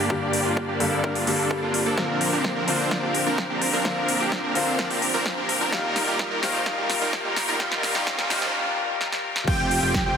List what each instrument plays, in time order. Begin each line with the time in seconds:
Already playing: grand piano G2 D3 G3 A#3 G4, string section G2 G3 A#3 D5
0.09 grand piano G2 D3 G3 A#3 G4, supersaw synth A#3 D4 G4, string section C4, kick
0.33 open hi-hat
0.45 supersaw synth A#3 D4 F4
0.57 kick
0.69 supersaw synth A#3 D4 G4
0.80 grand piano G2 D3 G3 A#3 G4, supersaw synth A#3 D4 A4, open hi-hat
1.04 supersaw synth A#3 D4 A#4, kick
1.15 supersaw synth A#3 D4 F4, open hi-hat
1.26 grand piano G2 D3 G3 A#3 G4, supersaw synth A#3 D4 A4, open hi-hat
1.51 kick
1.62 supersaw synth A#3 D4 F4
1.74 open hi-hat
1.86 supersaw synth A#3 D4 A4
1.96 string section A#2 F3 D4 A#4, grand piano D3 A#3 C4 F4, supersaw synth F3 A#3 C4 D4 A#4, kick, snare, riser
2.21 open hi-hat
2.33 supersaw synth F3 A#3 C4 D4 G4
2.44 kick, snare
2.56 supersaw synth F3 A#3 C4 D4 A#4
2.67 grand piano D3 A#3 C4 F4, supersaw synth F3 A#3 C4 D4 C5, open hi-hat
2.91 supersaw synth F3 A#3 C4 D4 D5, kick, snare
3.03 supersaw synth F3 A#3 C4 D4 G4
3.15 open hi-hat
3.26 supersaw synth F3 A#3 C4 D4 A#4
3.38 kick, snare
3.50 supersaw synth F3 A#3 C4 D4 G4
3.62 open hi-hat
3.73 supersaw synth F3 A#3 C4 D4 A#4
3.84 grand piano D3 A#3 C4 F4, supersaw synth F3 A#3 C4 D4 A#4, kick, snare
4.08 open hi-hat
4.20 supersaw synth F3 A#3 C4 D4 G4
4.32 kick, snare
4.44 supersaw synth F3 A#3 C4 D4 A#4
4.54 grand piano D3 A#3 C4 F4, supersaw synth F3 A#3 C4 D4 C5, open hi-hat
4.79 supersaw synth F3 A#3 C4 D4 D5, kick, snare
4.90 supersaw synth F3 A#3 C4 D4 G4, open hi-hat
5.02 open hi-hat
5.14 supersaw synth F3 A#3 C4 D4 A#4
5.26 kick, snare
5.37 supersaw synth F3 A#3 C4 D4 G4
5.49 open hi-hat
5.61 supersaw synth F3 A#3 C4 D4 A#4
5.71 string section D#2 D#3 G3 F4, grand piano D#3 G3 A#3 F4, supersaw synth G3 A#3 D#4 F4 A#4, kick, snare
5.96 snare, open hi-hat
6.08 supersaw synth G3 A#3 D#4 F4 G4
6.19 kick, snare
6.31 supersaw synth G3 A#3 D#4 F4 A#4
6.42 grand piano D#3 G3 A#3 F4, supersaw synth G3 A#3 D#4 F4 C5, snare, open hi-hat
6.66 supersaw synth G3 A#3 D#4 F4 D#5, kick, snare
6.78 supersaw synth G3 A#3 D#4 F4 G4
6.90 snare, open hi-hat
7.01 supersaw synth G3 A#3 D#4 F4 A#4
7.13 kick, snare
7.25 supersaw synth G3 A#3 D#4 F4 G4
7.36 snare, open hi-hat
7.48 supersaw synth G3 A#3 D#4 F4 A#4
7.59 grand piano D#3 G3 A#3 F4, supersaw synth G3 A#3 D#4 F4 A#4, kick, snare
7.72 snare
7.83 snare, open hi-hat
7.95 supersaw synth G3 A#3 D#4 F4 G4, snare
8.07 kick, snare
8.19 supersaw synth G3 A#3 D#4 F4 A#4, snare
8.30 grand piano D#3 G3 A#3 F4, supersaw synth G3 A#3 D#4 F4 C5, snare, open hi-hat
8.42 snare
9.01 snare
9.12 snare
9.36 snare
9.47 analog synth bass F1, string section G3 C4 F4, supersaw synth C4 F4 G4, analog synth lead G5, kick, crash
9.71 open hi-hat
9.83 analog synth bass F1, supersaw synth C4 F4 G4, analog synth lead G5
9.94 kick, snare
10.06 analog synth bass F1, supersaw synth C4 F4 G4, analog synth lead G5